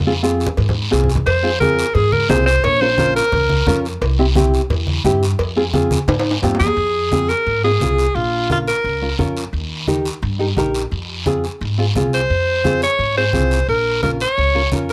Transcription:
Already playing: F2
0.06 C4 F4 G#4
0.23 C4 F4 G#4, short guiro
0.40 short guiro
0.46 low conga
0.57 G#2, cowbell, low conga, long guiro
0.69 low conga
0.91 C2 C4 F4 G#4, short guiro
1.04 low conga
1.09 short guiro
1.15 low conga
1.26 F2 C5, cowbell, long guiro
1.43 C4 F4 G#4
1.60 C4 F4 G#4 A#4, high conga, short guiro
1.79 short guiro
1.95 G#2 G#4, cowbell, low conga, long guiro
2.12 A#4, high conga
2.29 C2 C4 F4 G#4 C5, high conga, low timbale, short guiro
2.46 C5, short guiro
2.64 A#1 C#5, cowbell, low conga, long guiro
2.81 C#4 F4 A#4 C5
2.98 C#4 F4 A#4, high conga, short guiro
3.16 A#4, short guiro
3.32 C#2, cowbell, low conga, long guiro
3.49 high conga
3.67 F2 C#4 F4 A#4, high conga, short guiro
3.85 short guiro
4.01 C2, cowbell, long guiro
4.19 C4 E4 G4
4.35 C4 E4 G4, high conga, short guiro
4.54 short guiro
4.70 E2, cowbell, low conga, long guiro
4.87 high conga
5.04 G2 C4 E4 G4, high conga, short guiro
5.23 short guiro
5.39 F2, cowbell, long guiro
5.56 C4 F4 G#4
5.73 C4 F4 G#4, high conga, short guiro
5.91 high conga, short guiro
6.08 G#2, cowbell, high conga, high timbale, long guiro
6.19 high timbale
6.31 high timbale
6.42 G2 C4 F4 G4, low conga, low timbale, short guiro
6.55 low timbale
6.60 F2 G#4, low conga, short guiro
6.66 low timbale
6.76 F2, high conga, long guiro
7.12 C4 F4 G#4, high conga, short guiro
7.29 A#4, short guiro
7.46 G#2, high conga, long guiro
7.64 C4 F4 G#4
7.80 C2 C4 F4 G#4, high conga, short guiro
7.98 short guiro
8.15 A#1 F4, high conga, long guiro
8.50 C#4 F4 A#4, high conga, short guiro
8.68 A#4, short guiro
8.84 C#2, high conga, long guiro
9.02 C#4 F4 A#4
9.19 F2 C#4 F4 A#4, high conga, short guiro
9.37 short guiro
9.53 D#2, high conga, long guiro
9.87 D#4 G4 A#4, high conga, short guiro
10.05 short guiro
10.22 G2, high conga, long guiro
10.39 D#4 G4 A#4
10.57 A#1 D#4 G4 A#4, high conga, short guiro
10.74 short guiro
10.91 F2, high conga, long guiro
11.26 C4 F4 G#4, high conga, short guiro
11.44 short guiro
11.61 G#2, high conga, long guiro
11.78 C4 F4 G#4
11.95 C2 C4 F4 G#4, high conga, short guiro
12.13 C5, short guiro
12.30 F2, high conga, long guiro
12.64 C4 F4 G#4, high conga, short guiro
12.82 C#5, short guiro
12.99 G#2, high conga, long guiro
13.17 C4 F4 G#4 C5
13.33 C2 C4 F4 G#4, high conga, short guiro
13.51 short guiro
13.68 A#1 A#4, high conga, long guiro
14.03 C#4 F4 A#4, high conga, short guiro
14.20 C#5, short guiro
14.37 C#2, high conga, long guiro
14.55 C#4 F4 A#4
14.72 F2 C#4 F4 A#4, high conga, short guiro
14.89 short guiro

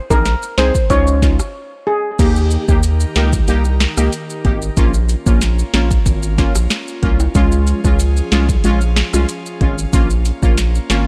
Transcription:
0.10 A#1 C4 D#4 G#4 A#4, kick, maracas
0.25 snare, closed hi-hat, maracas
0.43 maracas
0.58 C2 C4 D#4 G#4 C5, snare, closed hi-hat, maracas
0.75 kick, maracas
0.90 C#2 C#4 D#4 F4 C#5, kick, closed hi-hat, maracas
1.07 maracas
1.22 C#4 D#4 F4, kick, snare, closed hi-hat, maracas
1.39 cross-stick, maracas
1.87 G#4
2.19 D#2 D#3 A#3 D#4 G4 A#4, kick, closed hi-hat, crash, maracas
2.36 maracas
2.51 closed hi-hat, maracas
2.68 D#2 A#3 D#4 G4, kick, maracas
2.83 closed hi-hat, maracas
3.00 maracas
3.15 C#2 A#3 D#4 G4, snare, closed hi-hat, maracas
3.33 kick, maracas
3.48 C2 A#3 D#4 G4, closed hi-hat, maracas
3.65 maracas
3.80 snare, closed hi-hat, maracas
3.97 C#2 A#3 D#4 G4, cross-stick, maracas
4.13 closed hi-hat, maracas
4.30 maracas
4.45 G#1 A#3 D#4 G4, kick, closed hi-hat
4.62 maracas
4.77 A#1 A#3 C#4 F4, kick, closed hi-hat, maracas
4.94 maracas
5.09 closed hi-hat, maracas
5.26 A#1 A#3 C#4 F4, kick, maracas
5.41 snare, closed hi-hat, maracas
5.59 maracas
5.74 A#1 A#3 C#4 F4, snare, closed hi-hat, maracas
5.91 kick, maracas
6.06 G#1, kick, closed hi-hat, maracas
6.23 maracas
6.38 A#3 C#4 F4, kick, snare, closed hi-hat, maracas
6.55 A#1, cross-stick, maracas
6.70 snare, closed hi-hat, maracas
6.88 maracas
7.02 C2 A#3 C#4 F4, kick, closed hi-hat
7.20 high timbale, maracas
7.35 C#2 F3 G#3 C#4 F4 G#4, kick, closed hi-hat, maracas
7.52 maracas
7.67 closed hi-hat, maracas
7.84 C#2 G#3 C#4 F4, kick, maracas
7.99 closed hi-hat, maracas
8.17 maracas
8.32 C2 G#3 C#4 F4, snare, closed hi-hat, maracas
8.49 kick, maracas
8.64 A#1 G#3 C#4 F4, closed hi-hat, maracas
8.81 maracas
8.96 snare, closed hi-hat, maracas
9.13 C2 G#3 C#4 F4, cross-stick, maracas
9.29 closed hi-hat, maracas
9.46 maracas
9.61 G#1 G#3 C#4 F4, kick, closed hi-hat
9.78 maracas
9.93 A#1 A#3 C#4 F4, kick, closed hi-hat, maracas
10.10 maracas
10.25 closed hi-hat, maracas
10.42 A#1 A#3 C#4 F4, kick, maracas
10.57 snare, closed hi-hat, maracas
10.75 maracas
10.90 G#1 A#3 C#4 F4, snare, closed hi-hat, maracas

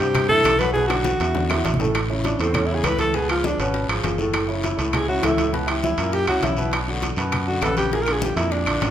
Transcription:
0.00 G2 C3 C4 G4 C5, high bongo, high timbale, short guiro
0.14 high bongo, high conga, low conga, high timbale, long guiro, claves
0.29 E3 E4 A4 E5, high conga, low conga
0.44 B1, high bongo, low bongo, high conga, high timbale, short guiro, claves
0.59 F#3 F#4 B4 F#5, high bongo, high conga, high timbale, short guiro
0.73 B2 B3 G#4 B4, high bongo, high conga, long guiro
0.87 D3 D4 F#4 D5, high bongo, high conga, high timbale, claves
1.04 high bongo, high conga, short guiro
1.20 E2 E3 E4 E5, low bongo, high conga, high timbale, short guiro
1.34 D3 D4 D5, low bongo, high conga, long guiro
1.50 E3 E4 E5, low bongo, high timbale, claves
1.54 high conga
1.65 A1, low bongo, high timbale, short guiro
1.74 low conga
1.80 A2 A3 A4, low bongo, short guiro
1.85 low conga
1.95 high bongo, high conga, high timbale, long guiro, claves
2.09 C#3 C#4 E4, high bongo, high conga
2.24 D4, high bongo, high conga, high timbale, short guiro
2.39 E2 A2 A3 C4 A4, high bongo, high timbale, short guiro
2.54 C#4, high bongo, high conga, low conga, high timbale, long guiro, claves
2.66 C#3 C#4 E4, high conga
2.75 G#4
2.83 C#2 A2 A3 A4 B4, high bongo, low bongo, high conga, high timbale, short guiro, claves
2.99 A4, high bongo, high conga, high timbale, short guiro
3.14 B2 B3 G#4 B4, high bongo, high conga, long guiro
3.29 F3 F4 G#4, high bongo, high conga, high timbale, claves
3.44 D4, high bongo, high conga, short guiro
3.58 G#1 B2 B3 C#4 B4, high bongo, high conga, high timbale, short guiro
3.74 high bongo, high conga, long guiro
3.88 G#1 F3 F4 G#4, high conga, high timbale, claves
4.03 F#1 F3 F4 G#4, high bongo, low bongo, high conga, high timbale, short guiro
4.18 A2 A3 A4, high bongo, high conga, short guiro
4.34 high bongo, high conga, high timbale, long guiro, claves
4.47 C#3 C#4 E4, high bongo, high conga
4.64 E4, high bongo, high conga, high timbale, short guiro
4.77 C#2 A2 A3 A4, high bongo, high timbale, short guiro
4.93 G#4, high bongo, high conga, low conga, high timbale, long guiro, claves
5.08 C#3 C#4 E4 F#4, high conga
5.22 C#2 A2 A3 E4 A4, high bongo, low bongo, high conga, high timbale, short guiro, claves
5.38 high bongo, high conga, high timbale, short guiro
5.53 B2 B3 B4, high bongo, high conga, long guiro
5.67 E3 E4 G4, high bongo, high conga, high timbale, claves
5.83 E4, high bongo, high conga, short guiro
5.97 F#2 A#2 A#3 A#4, high bongo, high conga, high timbale, short guiro
6.12 G4, high bongo, high conga, long guiro
6.27 C#2 C#3 C#4 E4 F#4, high conga, high timbale, claves
6.42 B1 C#3 C#4 E4, high bongo, low bongo, high conga, high timbale, short guiro
6.57 B2 B3 B4, high bongo, high conga, short guiro
6.71 high bongo, high conga, high timbale, long guiro, claves
6.88 D3 D4 F#4, high bongo, high conga
7.02 high bongo, high conga, high timbale, short guiro
7.16 F#2 B2 B3 B4, high bongo, high timbale, short guiro
7.32 high bongo, high conga, low conga, high timbale, long guiro, claves
7.47 D3 D4 F#4, high conga
7.61 A#1 C#3 B3 A4 B4, high bongo, low bongo, high conga, high timbale, low timbale, short guiro, claves
7.77 G4, high bongo, high conga, high timbale, short guiro
7.92 A#2 A#3 G#4 A#4, high bongo, high conga, long guiro
8.02 A#4
8.06 D3 D4 F4, high bongo, high conga, high timbale, claves
8.12 G#4
8.22 G4, high bongo, high conga, short guiro
8.36 F2 A#2 A#3 E4 A#4, high bongo, high conga, high timbale, short guiro
8.51 D4, high bongo, high conga, long guiro
8.66 A#1 D3 D4 F4, high conga, high timbale, claves
8.81 A1 D3 D4 F4, high bongo, low bongo, high conga, high timbale, short guiro

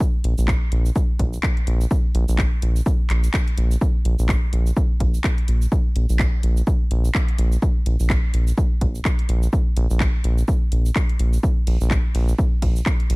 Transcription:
0.00 kick, cabasa
0.24 A#1, closed hi-hat
0.38 A#1, cabasa
0.48 kick, clap, cabasa
0.72 A#1, closed hi-hat
0.86 cabasa
0.96 kick, cabasa
1.19 A#1, kick, closed hi-hat
1.33 cabasa
1.43 kick, clap, cabasa
1.57 closed hi-hat
1.67 A#1, closed hi-hat
1.81 cabasa
1.91 kick, cabasa
2.15 A#1, closed hi-hat
2.29 A#1, cabasa
2.38 kick, clap, cabasa
2.62 A#1, closed hi-hat
2.76 cabasa
2.86 kick, cabasa
3.10 A#1, clap, closed hi-hat
3.24 closed hi-hat, cabasa
3.34 kick, clap, cabasa
3.48 closed hi-hat
3.58 A#1, closed hi-hat
3.71 cabasa
3.81 kick, cabasa
4.05 A#1, closed hi-hat
4.19 A#1, cabasa
4.29 kick, clap, cabasa
4.53 A#1, closed hi-hat
4.67 cabasa
4.77 kick, cabasa
5.00 A#1, kick, closed hi-hat
5.14 cabasa
5.24 kick, clap, cabasa
5.38 closed hi-hat
5.48 A#1, closed hi-hat
5.62 cabasa
5.72 kick, cabasa
5.96 A#1, closed hi-hat
6.09 A#1, cabasa
6.19 kick, clap, cabasa
6.43 A#1, closed hi-hat
6.57 cabasa
6.67 kick, cabasa
6.91 A#1, closed hi-hat
7.05 cabasa
7.15 kick, clap, cabasa
7.28 closed hi-hat
7.38 A#1, closed hi-hat
7.52 cabasa
7.62 kick, cabasa
7.86 A#1, closed hi-hat
8.00 A#1, cabasa
8.10 kick, clap, cabasa
8.34 A#1, closed hi-hat
8.48 cabasa
8.58 kick, cabasa
8.81 A#1, kick, closed hi-hat
8.95 cabasa
9.05 kick, clap, cabasa
9.19 closed hi-hat
9.29 A#1, closed hi-hat
9.43 cabasa
9.53 kick, cabasa
9.77 A#1, closed hi-hat
9.90 A#1, cabasa
10.00 kick, clap, cabasa
10.24 A#1, closed hi-hat
10.38 cabasa
10.48 kick, cabasa
10.72 A#1, closed hi-hat
10.86 cabasa
10.96 kick, clap, cabasa
11.09 closed hi-hat
11.19 A#1, closed hi-hat
11.33 cabasa
11.43 kick, cabasa
11.67 A#1, closed hi-hat, ride
11.81 A#1, cabasa
11.91 kick, clap, cabasa
12.15 A#1, closed hi-hat, ride
12.29 cabasa
12.38 kick, cabasa
12.62 A#1, kick, closed hi-hat, ride
12.76 cabasa
12.86 kick, clap, cabasa
13.00 closed hi-hat
13.10 A#1, closed hi-hat, ride

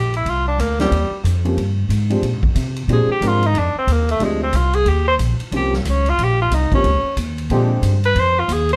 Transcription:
Already playing: A#1 G4
0.14 E4, ride
0.25 C2, kick, ride
0.29 F4
0.48 D4
0.58 D2 A#3, kick, hi-hat pedal, ride
0.79 F3 G3 A#3 C4 C#4 G4, snare, ride
0.91 D#2, kick, ride
1.11 muted upright bass stroke
1.24 F2, kick, hi-hat pedal, ride
1.45 F3 A#3 C4 C#4 G4, ride
1.57 G2, kick, ride
1.89 G#2, kick, hi-hat pedal, ride
2.10 F3 G#3 C4 D4 G4, ride
2.22 A#2, kick, ride
2.33 G#2
2.43 F2, kick
2.55 C3, kick, hi-hat pedal, ride
2.76 ride
2.88 A#2 F3 G#3 C4 D4 G4, kick, ride
2.93 G#4
3.07 muted upright bass stroke
3.12 G4
3.21 G#2 F3 G#3 C4 D4 A#4, kick, hi-hat pedal, ride
3.27 F4
3.43 D#4, ride
3.54 F2, kick, ride
3.59 D4
3.75 C4, muted upright bass stroke
3.87 D#2, kick, hi-hat pedal, ride
3.93 A#3
4.09 A3, ride
4.19 D2 F3 G#3 C4 D4 G4, kick, ride
4.24 G#3
4.44 C4
4.53 C2 F4, kick, hi-hat pedal, ride
4.73 G#4, ride
4.85 D#2 G4, kick, ride
5.08 C5
5.18 A#1, kick, hi-hat pedal, ride
5.40 muted upright bass stroke, ride
5.51 C2 F3 A#3 C4 C#4 G4, kick, ride
5.57 G4
5.73 A#3, snare
5.85 C#2, kick, hi-hat pedal, ride
5.90 C#4
6.06 F4, ride
6.18 A#1, kick, ride
6.24 G4
6.42 F4
6.51 C2 D#4, kick, hi-hat pedal, ride
6.72 F3 A#3 C4 C#4 G4, kick, ride
6.84 C#2, kick, ride
7.17 D#2, kick, hi-hat pedal, ride
7.38 ride
7.50 A#2 D3 F3 G#3 C4 D4 G4, kick, ride
7.82 G2, kick, hi-hat pedal, ride
8.04 B4, ride
8.15 F2, kick, ride
8.20 C5
8.39 F4
8.48 D#2, kick, hi-hat pedal, ride
8.53 G#4
8.69 C5, ride

